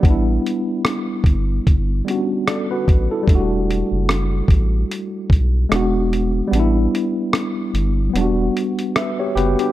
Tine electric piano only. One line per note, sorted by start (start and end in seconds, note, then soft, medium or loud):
0.00 2.00 G3 medium
0.00 2.02 B3 medium
0.07 2.04 D4 medium
0.07 2.06 E4 medium
2.04 3.22 G3 medium
2.04 3.28 B3 medium
2.08 2.15 C#4 soft
2.08 2.49 F#4 medium
2.15 3.30 D4 medium
2.48 2.69 A4 soft
2.48 2.69 D5 medium
2.71 3.09 F#4 medium
2.71 3.09 B4 medium
3.11 3.50 E4 medium
3.11 3.49 A4 medium
3.23 5.65 G3 medium
3.27 5.67 A3 medium
3.27 5.69 D4 medium
3.35 5.71 F#4 medium
5.69 6.51 G#3 medium
5.69 6.50 B3 medium
5.73 6.53 D4 medium
5.73 6.54 F#4 medium
6.47 8.09 G3 medium
6.47 8.11 B3 medium
6.55 8.13 D4 medium
6.59 8.15 E4 medium
8.10 8.19 F#3 medium
8.10 9.36 B3 medium
8.16 9.72 G3 medium
8.16 8.95 D4 medium
8.21 8.97 F#4 medium
8.96 9.18 B4 medium
8.96 9.18 E5 medium
9.19 9.34 G4 medium
9.19 9.35 C#5 medium
9.35 9.72 B3 medium
9.35 9.58 F#4 medium
9.35 9.59 G4 medium
9.35 9.58 B4 medium
9.60 9.72 D4 medium
9.60 9.72 G4 medium